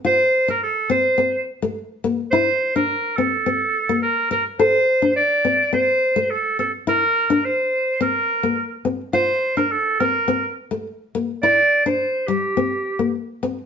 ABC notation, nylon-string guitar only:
X:1
M:4/4
L:1/16
Q:1/4=106
K:Bblyd
V:1 name="Nylon-string guitar"
F2 z4 C2 C2 z A,2 z B,2 | E2 z D2 z C2 C2 z B,2 z3 | A2 z D2 z C2 C2 z A,2 z C2 | E2 z D2 z3 C2 z B,2 z C2 |
F2 z D2 z C2 C2 z A,2 z B,2 | E2 z D2 z G,2 C2 z B,2 z C2 |]